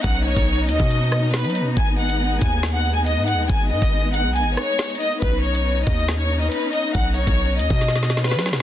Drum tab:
HH |x-----------------x-----------------x-----------x-----------------------x--x--x--x--x-----------|x-----------------x-----------------x-----------x-----------------------x-----------x-----------|x-----------------x-----------------x-----------x-----------------------x--x--x--x--o-----------|x-----------------x-----------------x-----------x-----------------------x-----------x-----------|
SD |------------------------------------------------------------r-----------o-----------------------|------------------------------------------------o-----------------------------------------------|------------------------------------------------------------r-----------o-----------------------|------------------------------------------------o-----------------------------------------------|
BD |o-----------------o-----------------------o-----------------------------------------------------|o-----------------------------------o-----------------------------------------------------------|o-----------------o-----------------------------------------------------------------------------|o-----------------------------------o-----------------------------------------------------------|

HH |x-----------------x-----------------x-----------x-----------------------x--x--x--x--x-----------|
SD |------------------------------------------------o---o---o---o---o---o---o---o---o---o---o-------|
BD |o-----------------o-----------------------o-----------------------------------------------------|